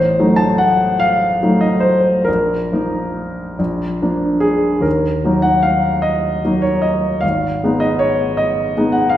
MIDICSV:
0, 0, Header, 1, 2, 480
1, 0, Start_track
1, 0, Key_signature, -6, "minor"
1, 0, Tempo, 818554
1, 835, Tempo, 855920
1, 2755, Time_signature, 12, 3, 24, 8
1, 2755, Tempo, 792602
1, 4195, Tempo, 755668
1, 5431, End_track
2, 0, Start_track
2, 0, Title_t, "Grand piano"
2, 0, Program_c, 0, 0
2, 0, Control_c, 0, 64, 127
2, 0, Note_on_c, 0, 33, 42
2, 0, Note_on_c, 0, 72, 58
2, 92, Note_off_c, 0, 33, 0
2, 113, Note_on_c, 0, 54, 36
2, 116, Note_on_c, 0, 57, 40
2, 117, Note_on_c, 0, 63, 38
2, 213, Note_on_c, 0, 81, 67
2, 230, Note_off_c, 0, 72, 0
2, 341, Note_on_c, 0, 78, 69
2, 344, Note_off_c, 0, 81, 0
2, 584, Note_on_c, 0, 77, 74
2, 589, Note_off_c, 0, 78, 0
2, 811, Note_off_c, 0, 54, 0
2, 813, Note_off_c, 0, 57, 0
2, 813, Note_off_c, 0, 63, 0
2, 836, Note_on_c, 0, 54, 32
2, 838, Note_on_c, 0, 57, 33
2, 841, Note_on_c, 0, 63, 35
2, 938, Note_on_c, 0, 75, 54
2, 945, Note_off_c, 0, 77, 0
2, 1047, Note_on_c, 0, 72, 54
2, 1062, Note_off_c, 0, 75, 0
2, 1289, Note_off_c, 0, 54, 0
2, 1290, Note_off_c, 0, 57, 0
2, 1292, Note_off_c, 0, 63, 0
2, 1296, Note_on_c, 0, 70, 54
2, 1300, Note_off_c, 0, 72, 0
2, 1316, Note_on_c, 0, 34, 41
2, 1322, Control_c, 0, 64, 0
2, 1449, Control_c, 0, 64, 127
2, 1553, Note_off_c, 0, 34, 0
2, 1562, Note_on_c, 0, 53, 32
2, 1568, Note_on_c, 0, 58, 31
2, 1568, Note_on_c, 0, 63, 35
2, 2028, Note_off_c, 0, 53, 0
2, 2031, Note_off_c, 0, 58, 0
2, 2031, Note_off_c, 0, 63, 0
2, 2050, Note_on_c, 0, 34, 40
2, 2059, Control_c, 0, 64, 0
2, 2167, Control_c, 0, 64, 127
2, 2282, Note_off_c, 0, 34, 0
2, 2292, Note_on_c, 0, 53, 27
2, 2294, Note_on_c, 0, 58, 26
2, 2294, Note_on_c, 0, 62, 30
2, 2506, Note_on_c, 0, 68, 59
2, 2518, Note_off_c, 0, 70, 0
2, 2731, Note_on_c, 0, 39, 38
2, 2734, Note_off_c, 0, 53, 0
2, 2735, Note_off_c, 0, 62, 0
2, 2736, Note_off_c, 0, 58, 0
2, 2739, Note_on_c, 0, 70, 43
2, 2745, Note_off_c, 0, 68, 0
2, 2768, Control_c, 0, 64, 0
2, 2870, Control_c, 0, 64, 127
2, 2976, Note_off_c, 0, 39, 0
2, 2995, Note_on_c, 0, 54, 33
2, 2998, Note_on_c, 0, 58, 34
2, 3001, Note_on_c, 0, 63, 31
2, 3103, Note_on_c, 0, 78, 62
2, 3110, Note_off_c, 0, 70, 0
2, 3226, Note_on_c, 0, 77, 57
2, 3234, Note_off_c, 0, 78, 0
2, 3465, Note_on_c, 0, 75, 60
2, 3478, Note_off_c, 0, 77, 0
2, 3698, Note_off_c, 0, 54, 0
2, 3700, Note_off_c, 0, 58, 0
2, 3701, Note_off_c, 0, 63, 0
2, 3724, Note_on_c, 0, 54, 32
2, 3727, Note_on_c, 0, 58, 29
2, 3728, Note_on_c, 0, 63, 31
2, 3827, Note_on_c, 0, 73, 56
2, 3830, Note_off_c, 0, 75, 0
2, 3948, Note_on_c, 0, 75, 53
2, 3951, Note_off_c, 0, 73, 0
2, 4172, Note_off_c, 0, 54, 0
2, 4173, Note_off_c, 0, 58, 0
2, 4174, Note_off_c, 0, 63, 0
2, 4183, Note_on_c, 0, 77, 57
2, 4190, Note_off_c, 0, 75, 0
2, 4199, Note_on_c, 0, 32, 36
2, 4208, Control_c, 0, 64, 0
2, 4336, Control_c, 0, 64, 127
2, 4436, Note_off_c, 0, 32, 0
2, 4456, Note_on_c, 0, 56, 35
2, 4460, Note_on_c, 0, 59, 33
2, 4464, Note_on_c, 0, 63, 37
2, 4557, Note_off_c, 0, 77, 0
2, 4560, Note_on_c, 0, 75, 58
2, 4681, Note_on_c, 0, 73, 64
2, 4683, Note_off_c, 0, 75, 0
2, 4923, Note_off_c, 0, 73, 0
2, 4924, Note_on_c, 0, 75, 58
2, 5144, Note_off_c, 0, 56, 0
2, 5146, Note_off_c, 0, 59, 0
2, 5148, Note_off_c, 0, 63, 0
2, 5177, Note_on_c, 0, 56, 33
2, 5181, Note_on_c, 0, 59, 33
2, 5183, Note_on_c, 0, 63, 38
2, 5273, Note_on_c, 0, 78, 60
2, 5279, Note_off_c, 0, 75, 0
2, 5382, Note_on_c, 0, 77, 63
2, 5394, Note_off_c, 0, 78, 0
2, 5431, Note_off_c, 0, 56, 0
2, 5431, Note_off_c, 0, 59, 0
2, 5431, Note_off_c, 0, 63, 0
2, 5431, Note_off_c, 0, 77, 0
2, 5431, End_track
0, 0, End_of_file